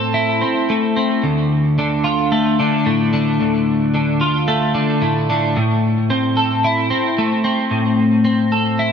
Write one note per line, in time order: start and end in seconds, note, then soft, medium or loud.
0.00 0.42 A2 medium
0.00 0.69 A3 medium
0.00 0.40 C4 medium
0.00 2.04 A4 medium
0.14 1.23 E4 medium
0.41 0.95 C4 medium
0.70 1.78 A3 medium
0.97 1.23 C4 medium
1.23 2.58 D2 medium
1.79 2.58 D3 medium
2.04 3.39 F4 medium
2.32 4.47 A3 medium
2.60 3.12 D3 medium
2.86 4.21 A2 medium
3.13 3.93 D3 medium
3.40 4.75 D2 medium
3.94 4.73 D3 medium
4.21 5.56 F4 medium
4.48 6.10 A3 medium
4.74 5.29 D3 medium
5.02 5.55 A2 medium
5.30 5.56 D3 medium
5.57 6.91 A2 medium
6.10 6.89 C4 medium
6.37 8.52 A4 medium
6.64 7.99 E4 medium
6.90 7.43 C4 medium
7.18 8.53 A3 medium
7.44 8.23 C4 medium
7.71 8.92 A2 medium
8.25 8.92 C4 medium
8.52 8.92 A4 medium
8.79 8.92 E4 medium